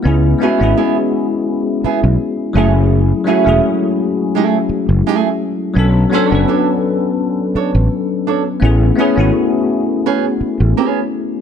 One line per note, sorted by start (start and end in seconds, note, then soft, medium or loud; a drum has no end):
0.03 0.33 C#2 medium
0.03 0.37 G#3 medium
0.03 0.38 B3 medium
0.03 0.38 C#4 medium
0.03 0.39 E4 medium
0.07 0.40 G#4 medium
0.39 0.57 G#3 medium
0.39 0.59 B3 medium
0.39 0.74 B3 medium
0.39 0.59 C#4 medium
0.39 0.60 E4 medium
0.39 0.75 E4 medium
0.43 0.60 F#4 medium
0.43 0.75 G#4 medium
0.59 0.73 G#1 medium
0.59 1.92 G#3 medium
0.59 1.93 B3 medium
0.59 1.93 C#4 medium
0.59 1.94 E4 medium
0.63 1.94 G#4 medium
0.77 0.96 B3 medium
0.77 0.96 E4 medium
0.77 0.96 G#4 medium
1.84 1.99 B3 medium
1.84 1.99 E4 medium
1.84 1.99 G#4 medium
1.84 muted fretless electric bass stroke soft
2.04 2.16 B1 medium
2.53 3.11 F#1 loud
2.53 3.21 F#3 medium
2.53 3.22 A3 medium
2.53 2.70 A3 medium
2.53 3.22 C#4 medium
2.53 2.70 E4 medium
2.53 3.23 E4 medium
2.53 2.71 G#4 medium
2.58 3.24 G#4 loud
3.24 3.43 F#3 medium
3.24 3.44 A3 medium
3.24 3.60 A3 medium
3.24 3.45 C#4 medium
3.24 3.60 E4 medium
3.24 3.45 E4 medium
3.28 3.46 F#4 medium
3.28 3.60 G#4 medium
3.44 3.59 E1 medium
3.44 4.77 F#3 medium
3.44 3.51 G#3 medium
3.44 4.79 C#4 medium
3.44 4.79 E4 medium
3.49 4.81 A3 medium
3.49 4.80 G#4 medium
4.35 4.56 A3 medium
4.35 4.56 E4 medium
4.35 4.56 G#4 medium
4.69 muted fretless electric bass stroke soft
4.89 5.01 F#1 medium
5.07 5.27 A3 medium
5.07 5.27 E4 medium
5.07 5.28 G#4 medium
5.74 6.04 B1 loud
5.74 6.09 F#3 medium
5.74 6.09 B3 medium
5.74 6.10 C#4 medium
5.74 6.10 D4 medium
5.79 6.11 A4 medium
6.10 6.29 F#3 medium
6.10 6.30 B3 medium
6.10 6.31 C#4 medium
6.10 6.27 C#4 medium
6.10 6.31 D4 medium
6.10 6.26 G#4 medium
6.10 6.27 C5 medium
6.15 6.32 A4 medium
6.26 7.63 F#3 medium
6.26 6.45 D4 medium
6.26 6.46 A4 medium
6.26 6.46 C#5 medium
6.31 6.44 F#1 medium
6.31 7.64 B3 medium
6.31 7.65 C#4 medium
6.31 7.65 D4 medium
6.31 7.66 B4 medium
6.48 6.67 D4 medium
6.48 6.67 A4 medium
6.48 6.67 C#5 medium
7.55 7.70 D4 medium
7.55 7.70 A4 medium
7.55 7.70 C#5 medium
7.55 muted fretless electric bass stroke soft
7.75 7.87 A1 medium
8.27 8.41 D4 medium
8.27 8.42 A4 medium
8.27 8.42 C#5 medium
8.60 8.90 A1 loud
8.60 8.94 A3 medium
8.60 8.95 B3 medium
8.60 8.96 C#4 medium
8.60 8.96 E4 medium
8.65 8.97 G#4 medium
8.96 9.14 A3 medium
8.96 9.16 B3 medium
8.96 9.31 B3 medium
8.96 9.16 C#4 medium
8.96 9.31 C#4 medium
8.96 9.17 E4 medium
9.00 9.32 G#4 medium
9.00 9.18 G#4 medium
9.15 9.30 G#1 medium
9.15 10.49 A3 medium
9.15 10.49 B3 medium
9.15 10.50 C#4 medium
9.15 10.51 E4 medium
9.20 10.51 F#4 medium
10.06 10.24 B3 medium
10.06 10.24 C#4 medium
10.06 10.25 G#4 medium
10.41 muted fretless electric bass stroke soft
10.60 10.73 A1 medium
10.77 10.98 B3 medium
10.77 10.99 C#4 medium
10.77 10.99 G#4 medium